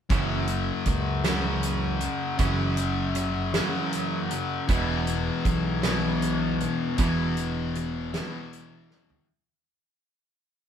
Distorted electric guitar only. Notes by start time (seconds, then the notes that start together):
0.10 F#2 C#3 F#3
1.25 F#2 C#3 F#3
2.38 F#2 C#3 F#3
3.54 F#2 C#3 F#3
4.68 E2 B2
4.72 E3
5.82 B2 E3
5.86 E2
6.97 E2 B2 E3
8.13 B2 E3
8.17 E2